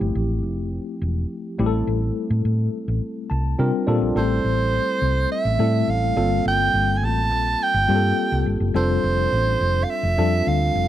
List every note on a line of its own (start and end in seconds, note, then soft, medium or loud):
0.00 0.12 G1 medium
0.00 0.27 F3 loud
0.00 0.28 A3 medium
0.00 0.28 C4 medium
0.00 0.28 E4 medium
0.00 0.28 G4 loud
0.15 0.44 A1 medium
0.44 0.78 F1 medium
1.02 1.24 E1 medium
1.59 1.81 A1 loud
1.59 2.50 G3 medium
1.59 2.50 A3 medium
1.59 2.50 C4 medium
1.59 2.51 E4 medium
1.59 1.66 G4 medium
1.66 2.54 A4 loud
1.87 2.10 A1 loud
2.30 2.42 A2 loud
2.45 2.67 A2 loud
2.88 2.99 A1 medium
3.30 3.53 C2 medium
3.30 3.57 A5 medium
3.59 3.70 C3 medium
3.59 3.82 G3 loud
3.59 3.82 C4 medium
3.59 3.82 D4 medium
3.59 3.82 F4 medium
3.59 3.82 A#4 loud
3.59 3.86 G5 medium
3.87 3.99 A#2 loud
3.87 4.05 G3 medium
3.87 4.05 C4 medium
3.87 4.05 D4 medium
3.87 4.05 F4 medium
3.87 4.06 A4 medium
3.87 4.14 D5 medium
4.01 4.13 A#1 medium
4.16 4.38 A1 loud
4.16 4.86 G3 medium
4.16 4.86 A3 medium
4.16 4.86 C4 medium
4.16 4.86 E4 medium
4.16 4.87 A4 medium
4.16 5.28 C5 medium
4.44 4.78 A1 medium
5.02 5.25 C2 medium
5.32 5.91 E5 medium
5.45 5.56 A1 medium
5.59 5.82 A2 loud
5.59 6.12 G3 medium
5.59 6.12 A3 medium
5.59 6.12 C4 medium
5.59 6.13 E4 medium
5.59 6.12 A4 medium
5.88 6.10 A1 medium
5.88 6.46 F5 loud
6.16 6.39 G1 loud
6.16 7.08 G3 medium
6.16 7.09 A#3 medium
6.16 7.09 C4 medium
6.16 7.09 F4 medium
6.16 7.09 A4 medium
6.45 6.68 G1 medium
6.45 6.98 G5 loud
6.74 7.03 G1 medium
6.97 7.06 G#5 medium
7.03 7.32 A1 loud
7.03 7.64 A5 loud
7.32 7.54 A#1 medium
7.63 8.48 G5 loud
7.74 7.86 G1 loud
7.88 8.11 G2 loud
7.88 8.41 G3 medium
7.88 8.41 A#3 medium
7.88 8.41 C4 medium
7.88 8.42 F4 medium
7.88 7.96 G4 medium
7.95 8.45 A4 medium
8.32 8.43 C2 medium
8.46 8.57 G1 medium
8.60 8.72 F#1 medium
8.74 8.97 F1 loud
8.74 9.45 G3 medium
8.74 9.45 C4 medium
8.74 9.45 D4 medium
8.74 9.45 F4 medium
8.74 9.45 A4 medium
8.74 9.85 C5 medium
9.04 9.26 F1 medium
9.32 9.55 A1 medium
9.61 9.83 F1 loud
9.83 9.91 F5 medium
9.90 10.49 E5 loud
10.03 10.15 F1 loud
10.18 10.41 F2 loud
10.18 10.70 G3 medium
10.18 10.71 C4 medium
10.18 10.71 D4 medium
10.18 10.71 F4 medium
10.18 10.71 A4 medium
10.47 10.69 D2 medium
10.47 10.88 F5 loud
10.75 10.88 F1 medium